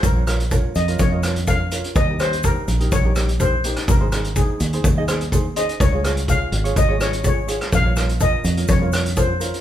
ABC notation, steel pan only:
X:1
M:4/4
L:1/8
Q:1/4=125
K:Bbm
V:1 name="Steel pan"
B z2 e d2 f2 | e c B2 d2 c2 | B2 A z4 e | d2 f2 e d d2 |
f2 e2 d2 c z |]